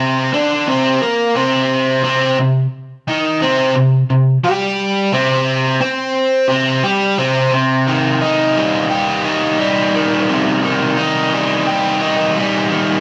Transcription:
Already playing: C3 C4
0.32 D3 D4
0.67 C3 C4
1.02 A#3 A#4
1.35 C3 C4
2.03 C3 C4
2.39 C3
3.08 D#3 D#4
3.41 C3 C4
3.76 C3
4.10 C3
4.44 G3 G4
5.12 C3 C4
5.80 C4 C5
6.48 C3 C4
6.83 G3 G4
7.18 C3 C4
7.52 C3
7.87 D#3
8.21 D#4
8.57 G3
8.91 G4
9.25 D#4
9.59 G3
9.95 D#3
10.29 C3
10.63 D#3
10.97 D#4
11.32 G3
11.67 G4
12.01 D#4
12.37 G3
12.70 D#3

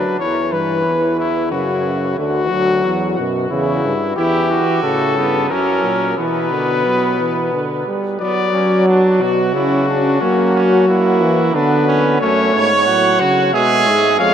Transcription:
Already playing: F#3 D4 B4
0.19 E2 E3 C#5
0.52 G2 B4
0.86 E2
1.20 E4
1.52 F#2 C#3 F#4
2.18 D2 D3 F#4
2.51 D2 F#3
2.85 E2
3.18 F#2 B2
3.50 E2 C#3 E4
3.84 G2
4.17 E2 E3 E4 G4
4.51 F#4
4.83 A2 C#3 A4
5.17 G2 B3
5.50 F#2 F#3 C#4 A#4
5.84 A#2
6.17 B2 E3 B3 B4
6.51 D3
6.86 F#3
7.19 E3
7.53 D3
7.87 G3
8.21 F#3 B3 D5
8.54 F#3 C#4
8.88 D4 F#4
9.21 B2 F#4
9.54 C#3 C#4 E4
9.88 D4
10.21 F#3 A#3 C#4
10.55 C#4
10.88 A#3 E4
11.21 E3
11.54 D3 B3 D4 B4
11.88 C#4
12.21 F#2 A3 C#4 C#5
12.54 G#2 C#5
12.87 A2 F#3 F#5
13.20 C#3 F#4
13.53 B2 G#3 G#4 E5
13.87 G#2
14.19 F2 G#3 C#5 F5

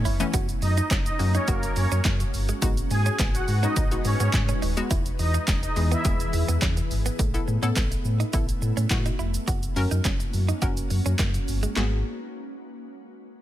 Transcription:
Already playing: A3 B3 E4
0.05 F1 E4, open hi-hat, shaker
0.20 E3 A3 B3 C#4, closed hi-hat, shaker
0.33 F#1 A#3 C#4 F#4, kick, closed hi-hat, shaker
0.49 closed hi-hat, shaker
0.62 F#2 D#4 D#5, muted clean electric guitar stroke, open hi-hat, shaker
0.77 D#4, closed hi-hat, shaker
0.91 F#1 C#4, kick, snare, clap, closed hi-hat, shaker
1.06 D#4 D#5, muted clean electric guitar stroke, closed hi-hat, shaker
1.19 F#2 F#3 A#3 C#4 F#4, open hi-hat, shaker
1.35 C#4 D#4 C#5, closed hi-hat, shaker
1.48 F#1 F#3 A#3 C#4 F#4 A#4, kick, closed hi-hat, shaker
1.63 closed hi-hat, shaker
1.76 F#2 C#4 C#5, muted clean electric guitar stroke, open hi-hat, shaker
1.92 F#2 C#4, closed hi-hat, shaker
2.05 F#2 A#3, kick, snare, clap, closed hi-hat, shaker
2.20 muted clean electric guitar stroke, closed hi-hat, shaker
2.34 G1, open hi-hat, shaker
2.49 G#3, closed hi-hat, shaker
2.62 G#1 G#3 B3 D#4 F#4 B4, kick, closed hi-hat, shaker
2.77 closed hi-hat, shaker
2.91 G#2 G#4 G#5, muted clean electric guitar stroke, open hi-hat, shaker
3.06 C#4, closed hi-hat, shaker
3.19 G#1 B3, kick, snare, clap, closed hi-hat, shaker
3.34 F#4 F#5, muted clean electric guitar stroke, closed hi-hat, shaker
3.48 G#2, open hi-hat, shaker
3.63 G#3 B3 C#4 D#4 F#4 D#5, closed hi-hat, shaker
3.76 G#1 D#4, kick, closed hi-hat, shaker
3.91 G#3 B3 D#4 F#4, closed hi-hat, shaker
4.05 G#2 C#4 C#5, muted clean electric guitar stroke, open hi-hat, shaker
4.20 G#2 B3, closed hi-hat, shaker
4.33 G#2, muted clean electric guitar stroke, kick, snare, clap, closed hi-hat, shaker
4.49 C#4, closed hi-hat, shaker
4.62 D#1 D#4, open hi-hat, shaker
4.77 G#3 B3 D#4 F#4, closed hi-hat, shaker
4.91 E1 E3 E4 G#4 B4, kick, closed hi-hat, shaker
5.06 closed hi-hat, shaker
5.19 E2 D#4 D#5, muted clean electric guitar stroke, open hi-hat, shaker
5.34 D#4, closed hi-hat, shaker
5.48 E1 C#4, kick, snare, clap, closed hi-hat, shaker
5.63 D#4 D#5, muted clean electric guitar stroke, closed hi-hat, shaker
5.76 E2 G#3 B3 E4 G#4, open hi-hat, shaker
5.91 B3 E4 E5, closed hi-hat, shaker
6.05 E1 G#3 B3 E4 G#4, kick, closed hi-hat, shaker
6.20 closed hi-hat, shaker
6.33 E2, muted clean electric guitar stroke, open hi-hat, shaker
6.48 E2 B3, closed hi-hat, shaker
6.62 E2 C#4, kick, snare, clap, closed hi-hat, shaker
6.77 muted clean electric guitar stroke, closed hi-hat, shaker
6.91 G#1, open hi-hat, shaker
7.06 B3, closed hi-hat, shaker
7.19 A1 A3 B3 E4, kick, closed hi-hat, shaker
7.34 B3 E4 A4, closed hi-hat, shaker
7.48 A2, muted clean electric guitar stroke, shaker
7.62 A2 B3 C#4 E4 A4, closed hi-hat, shaker
7.76 A1 B3, kick, snare, clap, closed hi-hat, shaker
7.91 muted clean electric guitar stroke, closed hi-hat, shaker
8.05 A2, shaker
8.20 D#4, closed hi-hat, shaker
8.33 A1 B3 E4 A4, kick, closed hi-hat, shaker
8.49 closed hi-hat, shaker
8.62 A2, muted clean electric guitar stroke, shaker
8.77 A2 C#4, closed hi-hat, shaker
8.90 A2 B3 E4 F#4, muted clean electric guitar stroke, kick, snare, clap, closed hi-hat, shaker
9.06 D#4, closed hi-hat, shaker
9.19 F1 E4, shaker
9.34 closed hi-hat, shaker
9.48 F#1 A#3 C#4 F#4, kick, closed hi-hat, shaker
9.63 closed hi-hat, shaker
9.76 F#2 C#4 F#4 A#4, muted clean electric guitar stroke, open hi-hat, shaker
9.91 F#2 D#4, closed hi-hat, shaker
10.05 F#1 C#4, kick, snare, clap, closed hi-hat, shaker
10.20 muted clean electric guitar stroke, closed hi-hat, shaker
10.33 F#2, open hi-hat, shaker
10.48 D#4, closed hi-hat, shaker
10.62 F#1 C#4 F#4 A#4, kick, closed hi-hat, shaker
10.77 closed hi-hat, shaker
10.90 F#2, muted clean electric guitar stroke, open hi-hat, shaker
11.06 F#2 C#4, closed hi-hat, shaker
11.19 F#2 A#3, kick, snare, clap, closed hi-hat, shaker
11.34 muted clean electric guitar stroke, closed hi-hat, shaker
11.48 G1, open hi-hat, shaker
11.63 G#3, closed hi-hat, shaker
11.76 G#1 G#3 B3 F#4 G#4, snare, clap

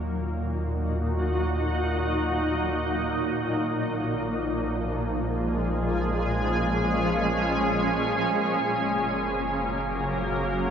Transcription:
Already playing: D#2 A#2 D#3 F#3 A#3 D#4
0.19 F#4
3.67 A#1
3.90 F3
4.57 G#3
4.79 G#4
5.83 C#4
8.46 F#1 C#3
8.82 A#3
9.07 F#3
10.61 D#4 A#4

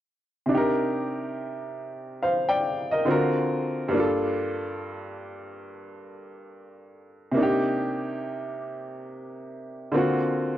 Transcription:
0.46 C3 D4
0.51 D#4 G4
0.57 A#4
2.23 C5 F5
2.49 D5 G5
2.92 A#4 D#5
3.05 D3 C4 F4
3.10 F#4 A#4
3.89 G2 A#3
3.94 D4 F4
4.00 A4
7.31 C3 A#3
7.37 D4 D#4
7.43 G4
9.92 D3 A#3 C4
9.96 F4 F#4

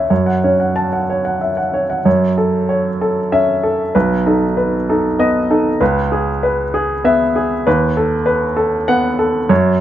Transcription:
Already playing: C#2 C#4 C#5 D#5 E5 B5
0.10 F#2 C#5
0.26 F#5
0.44 C#4 C#5
0.60 F#5
0.76 A5
0.93 F#5
1.10 C#5
1.25 F#5
1.41 E5
1.57 F#5
1.74 C#5
1.90 F#5
2.05 F#2 C#5
2.38 A4
2.69 C#5
3.01 A4
3.32 C#4 E5
3.63 A4
3.95 B1 B4
4.26 D#4 A4
4.57 B4
4.89 D#4 A4
5.19 B3 D#5
5.50 D#4 A4
5.81 C#2 B4
6.12 G#4
6.43 B4
6.74 G#4
7.04 B3 E5
7.36 G#4
7.67 D#2 B4
7.97 A4
8.26 B4
8.57 A4
8.88 B3 F#5
9.19 A4
9.49 F#2 C#5

